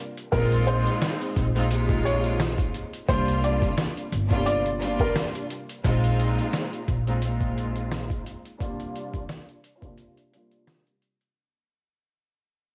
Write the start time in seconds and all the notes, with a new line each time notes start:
0.18 closed hi-hat
0.32 A#1 A#2 G#3 C4 D#4 F4 A#4, kick, closed hi-hat
0.52 closed hi-hat
0.67 C5, closed hi-hat
0.87 closed hi-hat
1.02 snare, closed hi-hat
1.21 closed hi-hat
1.36 A#1, kick, closed hi-hat
1.56 A#2 G#3 C4 D#4 F4, closed hi-hat
1.70 A#2 C3 G#3 D#4 F4, closed hi-hat
1.89 kick, closed hi-hat
2.05 C#5, closed hi-hat
2.24 closed hi-hat
2.40 snare, closed hi-hat
2.58 kick, closed hi-hat
2.74 closed hi-hat
2.93 closed hi-hat
3.08 C2 C3 G3 A#3 D4 F4 C5, kick, closed hi-hat
3.28 closed hi-hat
3.44 D5, closed hi-hat
3.62 kick, closed hi-hat
3.77 snare, closed hi-hat
3.97 closed hi-hat
4.12 G1, closed hi-hat
4.29 C3 G3 A#3 D4 F4, kick, closed hi-hat
4.46 D5, closed hi-hat
4.66 closed hi-hat
4.80 C3 G3 A#3 D4 F4, closed hi-hat
5.00 A#4, kick, closed hi-hat
5.16 snare, closed hi-hat
5.35 closed hi-hat
5.50 closed hi-hat
5.69 closed hi-hat
5.84 A#1 A#2 G#3 C4 D#4 F4, kick, closed hi-hat
6.04 closed hi-hat
6.20 closed hi-hat
6.39 closed hi-hat
6.53 snare, closed hi-hat
6.73 closed hi-hat
6.88 A#1, kick, closed hi-hat
7.07 A#2 G#3 C4 D#4 F4, closed hi-hat
7.22 A#2 G#3 C4 D#4 F4, closed hi-hat
7.41 kick, closed hi-hat
7.58 closed hi-hat
7.76 closed hi-hat
7.91 snare, closed hi-hat
8.10 kick, closed hi-hat
8.26 closed hi-hat
8.45 closed hi-hat
8.60 C3 G3 A#3 D4 F4, kick, closed hi-hat
8.80 closed hi-hat
8.96 closed hi-hat
9.14 kick, closed hi-hat
9.29 snare, closed hi-hat
9.49 closed hi-hat
9.64 closed hi-hat
9.81 C3 G3 A#3 D4 F4, kick, closed hi-hat
9.98 closed hi-hat
10.17 closed hi-hat
10.32 C3 G3 A#3 D4 F4, closed hi-hat
10.51 closed hi-hat
10.67 snare, closed hi-hat
10.87 closed hi-hat
11.02 closed hi-hat
11.21 closed hi-hat